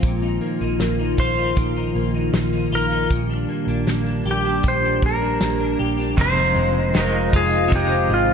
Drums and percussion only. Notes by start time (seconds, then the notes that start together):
0.03 kick, closed hi-hat
0.80 snare, closed hi-hat
1.18 kick
1.57 kick, closed hi-hat
2.33 snare, closed hi-hat
3.10 kick, closed hi-hat
3.87 snare, closed hi-hat
4.63 kick, closed hi-hat
5.02 kick
5.41 snare, closed hi-hat
6.18 kick, crash
6.95 snare, closed hi-hat, tambourine
7.33 kick
7.72 kick, closed hi-hat